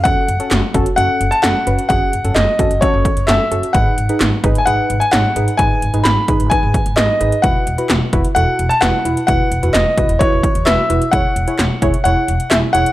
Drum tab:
HH |x-xxx-xxx-xxx-xx|x-xxx-xxx-xxx-xx|x-xxx-xxx-xxx-xx|x-xxx-xxx-xxx-xx|
CP |----x-------x---|----x-------x---|----x-------x---|----x-------x---|
SD |----o-------o---|----o-------o---|----o-------o---|----o-------o---|
BD |o-----o---------|o-----o-o-o-----|o-----o---------|o-----o-o-o-----|

HH |x-xxx-xxx-xxx-xx|x-xxx-xxx-xxx-xx|x-xxx-xxx-xxx-xx|
CP |----x-------x---|----x-------x---|----x-------x---|
SD |----o-------o---|----o-------o---|----o-------o---|
BD |o-----o---------|o-----o-o-o-----|o-----o---------|